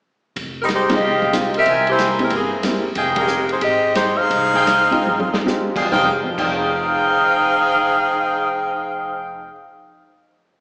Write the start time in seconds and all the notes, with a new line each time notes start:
0.36 F1, kick, ride
0.62 G3 C4 D#4 A#4
0.68 snare, hi-hat pedal, ride
0.75 G#3 D#4 G4 C5
0.88 G#3 C4 D#4 F4 G4, snare, ride
0.94 C4 G4 G#4 D#5
1.00 C2 F4 D#5 F5 G5
1.22 kick
1.32 G#3 C4 D#4 F4 G4, snare, hi-hat pedal, ride
1.54 C4 G4 A#4 E5, ride
1.66 C2 A#4 C5 E5 G#5, kick, ride
1.87 A#3 E4 G4 C5, ride
1.99 snare, hi-hat pedal, ride
2.19 G3 G#3 A#3 C4 E4 G4 A#4, ride
2.30 G1 E3 A#3 C4, kick, ride
2.34 G#4
2.63 G#3 A#3 C4 E4 G4, snare, hi-hat pedal, ride
2.95 F1 G#4 D#5 F5 G5, kick, ride
3.16 G#3 D#4 G4 A#4, kick, ride
3.28 hi-hat pedal
3.49 G#3 D#4 G4 C5, ride
3.61 G#1 C4 G4 G#4 D#5, kick, ride
3.94 G#3 D#4 G4 C5, snare, hi-hat pedal, ride
4.17 D#4 G#4 C5 F5
4.30 C2, kick, ride
4.54 G#4 D#5 F5 G5, snare
4.67 snare, hi-hat pedal, ride
4.91 G#3 C4 D#4 F4 G5, muted upright bass stroke, ride
5.05 G#1, high tom
5.20 high tom
5.34 snare
5.45 G#3 C4 D#4 F4 G4, snare, hi-hat pedal
5.76 F2 G#4 D#5 F5 G5, kick, crash
5.85 F3
5.91 F1 D#4 G#4 C5 D#5 F5 G5, kick, snare
5.97 G4
6.04 G#4
6.24 F2
6.30 F3
6.37 F1 D#4 G#4 C5 D#5 F5 G5, kick, crash
6.43 G5
6.50 G#4